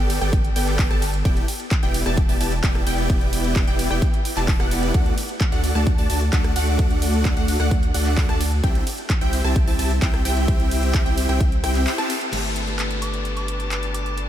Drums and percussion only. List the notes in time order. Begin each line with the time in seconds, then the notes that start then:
0.10 open hi-hat, ride
0.21 cross-stick, closed hi-hat
0.33 kick, closed hi-hat
0.44 closed hi-hat
0.56 open hi-hat, ride
0.68 clap, closed hi-hat
0.79 kick, clap, open hi-hat
0.91 cross-stick, closed hi-hat
1.02 open hi-hat, ride
1.14 closed hi-hat
1.25 kick, closed hi-hat
1.37 closed hi-hat
1.48 open hi-hat, ride
1.60 closed hi-hat
1.71 kick, clap, closed hi-hat
1.83 closed hi-hat
1.94 open hi-hat, ride
2.06 cross-stick, closed hi-hat
2.17 kick, closed hi-hat
2.29 open hi-hat
2.41 open hi-hat, ride
2.52 closed hi-hat
2.64 kick, clap, closed hi-hat
2.75 cross-stick, closed hi-hat
2.87 open hi-hat, ride
2.98 closed hi-hat
3.10 kick, closed hi-hat
3.21 closed hi-hat
3.33 open hi-hat, ride
3.44 closed hi-hat
3.56 kick, clap, closed hi-hat
3.67 closed hi-hat
3.79 open hi-hat, ride
3.91 cross-stick
4.02 kick, closed hi-hat
4.14 closed hi-hat
4.25 open hi-hat, ride
4.37 clap, closed hi-hat
4.48 kick, clap, open hi-hat
4.60 cross-stick, closed hi-hat
4.71 open hi-hat, ride
4.83 closed hi-hat
4.94 kick, closed hi-hat
5.06 closed hi-hat
5.18 open hi-hat, ride
5.29 closed hi-hat
5.41 kick, clap, closed hi-hat
5.52 closed hi-hat
5.64 open hi-hat, ride
5.75 cross-stick, closed hi-hat
5.87 kick, closed hi-hat
5.98 open hi-hat
6.10 open hi-hat, ride
6.21 closed hi-hat
6.33 kick, clap, closed hi-hat
6.44 cross-stick, closed hi-hat
6.56 open hi-hat, ride
6.67 closed hi-hat
6.79 kick, closed hi-hat
6.91 closed hi-hat
7.02 open hi-hat, ride
7.14 closed hi-hat
7.25 kick, clap, closed hi-hat
7.37 closed hi-hat
7.48 open hi-hat, ride
7.60 cross-stick, closed hi-hat
7.71 kick, closed hi-hat
7.83 closed hi-hat
7.94 open hi-hat, ride
8.06 clap, closed hi-hat
8.17 kick, clap, open hi-hat
8.29 cross-stick, closed hi-hat
8.41 open hi-hat, ride
8.52 closed hi-hat
8.64 kick, closed hi-hat
8.75 closed hi-hat
8.87 open hi-hat, ride
8.98 closed hi-hat
9.10 kick, clap, closed hi-hat
9.21 closed hi-hat
9.33 open hi-hat, ride
9.44 cross-stick, closed hi-hat
9.56 kick, closed hi-hat
9.68 open hi-hat
9.79 open hi-hat, ride
9.91 closed hi-hat
10.02 kick, clap, closed hi-hat
10.14 cross-stick, closed hi-hat
10.25 open hi-hat, ride
10.37 closed hi-hat
10.48 kick, closed hi-hat
10.60 closed hi-hat
10.71 open hi-hat, ride
10.83 closed hi-hat
10.94 kick, clap, closed hi-hat
11.06 closed hi-hat
11.18 open hi-hat, ride
11.29 cross-stick, closed hi-hat
11.41 kick, closed hi-hat
11.52 closed hi-hat
11.64 cross-stick, open hi-hat, ride
11.75 clap, closed hi-hat
11.87 clap, open hi-hat
11.98 cross-stick, closed hi-hat
12.10 open hi-hat, ride
12.21 closed hi-hat
12.33 closed hi-hat, crash
12.44 closed hi-hat
12.56 closed hi-hat
12.67 closed hi-hat
12.79 clap, closed hi-hat
12.91 closed hi-hat
13.02 closed hi-hat
13.14 closed hi-hat
13.25 closed hi-hat
13.37 closed hi-hat
13.48 closed hi-hat
13.60 closed hi-hat
13.71 clap, closed hi-hat
13.83 closed hi-hat
13.94 closed hi-hat
14.06 closed hi-hat
14.18 closed hi-hat